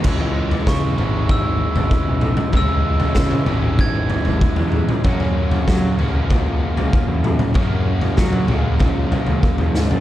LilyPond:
<<
  \new Staff \with { instrumentName = "Glockenspiel" } { \time 4/4 \key cis \dorian \tempo 4 = 96 r4 cis'''4 e'''2 | e'''2 gis'''4. r8 | r1 | r1 | }
  \new Staff \with { instrumentName = "Distorted electric guitar" } { \clef bass \time 4/4 \key cis \dorian <cis e gis cis' e'>4. <cis e gis cis' e'>2~ <cis e gis cis' e'>8 | <cis e gis cis' e'>4. <cis e gis cis' e'>2~ <cis e gis cis' e'>8 | <fis, cis fis ais cis' fis'>4. <fis, cis fis ais cis' fis'>2~ <fis, cis fis ais cis' fis'>8 | <fis, cis fis ais cis' fis'>4. <fis, cis fis ais cis' fis'>2~ <fis, cis fis ais cis' fis'>8 | }
  \new Staff \with { instrumentName = "Picked electric bass" } { \clef bass \time 4/4 \key cis \dorian cis,4 cis8 gis,,4~ gis,,16 gis,,16 r16 b,,8 r16 | cis,4 cis8 gis,,4~ gis,,16 gis,,16 r16 e,8 r16 | fis,4 fis8 cis,4~ cis,16 cis,16 r16 e,8 r16 | fis,4 fis8 cis,4~ cis,16 cis,16 r16 e,16 gis,16 fis,16 | }
  \new DrumStaff \with { instrumentName = "Drums" } \drummode { \time 4/4 <cymc bd tomfh>16 tomfh8 tomfh16 <bd sn toml>8 tomfh8 <bd tomfh>8. tomfh16 bd8 toml16 <tomfh toml>16 | <bd tomfh>8. tomfh16 <bd sn toml>16 tomfh16 <tomfh toml>8 <bd tomfh>8 tomfh16 tomfh16 bd16 tomfh16 toml16 <tomfh toml>16 | <bd tomfh>16 tomfh8 tomfh16 <bd sn toml>8 tomfh8 <bd tomfh>8. tomfh16 bd8 toml16 <tomfh toml>16 | <bd tomfh>8. tomfh16 <bd sn toml>16 tomfh16 <tomfh toml>8 <bd tomfh>8 tomfh16 tomfh16 bd16 tomfh16 sn16 tomfh16 | }
>>